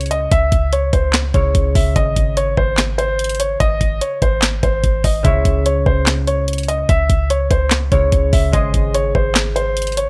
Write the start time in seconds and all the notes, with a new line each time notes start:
Already playing: C#2 C#3 G#3 E4 C#5
0.01 closed hi-hat
0.06 closed hi-hat
0.11 D#5, closed hi-hat
0.31 C#2 E5, kick, closed hi-hat
0.52 C#2, kick, closed hi-hat
0.73 C#5, closed hi-hat
0.93 C#2 C5, kick, closed hi-hat
1.13 snare, clap, closed hi-hat
1.34 C#2 C#3 G#3 E4 C#5, kick, closed hi-hat
1.55 C#2, kick, closed hi-hat
1.75 C#2 E5, kick, open hi-hat
1.96 G#1 D#5, kick, closed hi-hat
2.16 G#1, kick, closed hi-hat
2.37 C#5, closed hi-hat
2.57 G#1 C5, kick
2.77 snare, clap, closed hi-hat
2.98 C5, closed hi-hat
3.19 closed hi-hat
3.24 closed hi-hat
3.29 closed hi-hat
3.35 closed hi-hat
3.40 C#5, closed hi-hat
3.60 G#1 D#5, kick, closed hi-hat
3.81 G#1, kick, closed hi-hat
4.01 C#5, closed hi-hat
4.22 G#1 C5, kick, closed hi-hat
4.42 snare, clap, closed hi-hat
4.63 G#1 C5, kick, closed hi-hat
4.84 G#1, kick, closed hi-hat
5.04 G#1 D#5, kick, open hi-hat
5.23 C#2 C#3 G#3 E4 C#5 E5, kick, closed hi-hat
5.45 C#2, kick, closed hi-hat
5.66 C#5, closed hi-hat
5.86 C#2 C5, kick
6.06 snare, clap, closed hi-hat
6.27 C#5, closed hi-hat
6.48 closed hi-hat
6.53 closed hi-hat
6.58 closed hi-hat
6.63 closed hi-hat
6.68 D#5, closed hi-hat
6.89 C#2 E5, kick, closed hi-hat
7.10 C#2, kick, closed hi-hat
7.30 C#5, closed hi-hat
7.51 C#2 C5, kick, closed hi-hat
7.71 snare, clap, closed hi-hat
7.91 C#2 C#3 G#3 E4 C#5, kick, closed hi-hat
8.12 C#2, kick, closed hi-hat
8.33 C#2 E5, kick, open hi-hat
8.52 G#1 G#3 G#4 C5 D#5, kick, closed hi-hat
8.74 G#1, kick, closed hi-hat
8.95 C#5, closed hi-hat
9.15 G#1 C5, kick
9.35 snare, clap, closed hi-hat
9.56 C5, closed hi-hat
9.77 closed hi-hat
9.82 closed hi-hat
9.87 closed hi-hat
9.92 closed hi-hat
9.97 C#5, closed hi-hat